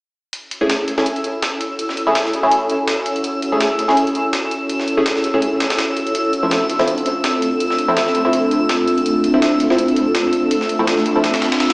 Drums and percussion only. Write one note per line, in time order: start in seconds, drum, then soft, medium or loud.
0.33 closed hi-hat medium
0.51 closed hi-hat medium
0.70 snare loud
0.70 closed hi-hat medium
0.88 closed hi-hat medium
0.98 snare soft
1.06 closed hi-hat medium
1.16 closed hi-hat soft
1.24 closed hi-hat medium
1.42 snare loud
1.42 closed hi-hat medium
1.61 closed hi-hat medium
1.79 closed hi-hat medium
1.89 snare soft
1.97 closed hi-hat medium
2.15 snare loud
2.15 closed hi-hat medium
2.25 snare soft
2.33 closed hi-hat medium
2.51 closed hi-hat medium
2.70 closed hi-hat medium
2.88 snare loud
2.88 closed hi-hat medium
3.06 closed hi-hat medium
3.16 closed hi-hat soft
3.24 closed hi-hat medium
3.42 closed hi-hat medium
3.60 snare loud
3.60 closed hi-hat medium
3.79 closed hi-hat medium
3.89 snare soft
3.97 closed hi-hat medium
4.07 closed hi-hat soft
4.15 closed hi-hat medium
4.33 snare loud
4.33 closed hi-hat medium
4.51 closed hi-hat medium
4.69 closed hi-hat medium
4.80 snare soft
4.88 closed hi-hat medium
5.06 snare loud
5.06 closed hi-hat medium
5.16 snare soft
5.24 closed hi-hat medium
5.42 closed hi-hat medium
5.60 snare loud
5.60 closed hi-hat medium
5.70 snare loud
5.70 closed hi-hat medium
5.79 snare loud
5.79 closed hi-hat medium
5.97 closed hi-hat medium
6.07 closed hi-hat soft
6.15 closed hi-hat medium
6.33 closed hi-hat medium
6.51 snare loud
6.51 closed hi-hat medium
6.70 closed hi-hat medium
6.79 snare soft
6.88 closed hi-hat medium
6.98 closed hi-hat soft
7.06 closed hi-hat medium
7.24 snare loud
7.24 closed hi-hat medium
7.42 closed hi-hat medium
7.60 closed hi-hat medium
7.70 snare soft
7.78 closed hi-hat medium
7.97 snare loud
7.97 closed hi-hat medium
8.07 snare soft
8.15 closed hi-hat medium
8.33 closed hi-hat medium
8.51 closed hi-hat medium
8.69 snare loud
8.69 closed hi-hat medium
8.88 closed hi-hat medium
8.98 closed hi-hat soft
9.06 closed hi-hat medium
9.24 closed hi-hat medium
9.42 snare loud
9.42 closed hi-hat medium
9.60 closed hi-hat medium
9.70 snare soft
9.78 closed hi-hat medium
9.88 closed hi-hat soft
9.96 closed hi-hat medium
10.15 snare loud
10.15 closed hi-hat medium
10.33 closed hi-hat medium
10.51 closed hi-hat medium
10.61 snare soft
10.69 closed hi-hat medium
10.87 snare loud
10.87 closed hi-hat medium
10.97 snare soft
11.06 closed hi-hat medium
11.24 snare loud
11.24 closed hi-hat medium
11.34 snare loud
11.34 closed hi-hat medium
11.42 snare loud
11.42 closed hi-hat medium
11.52 snare loud
11.52 closed hi-hat medium
11.60 snare loud
11.60 closed hi-hat medium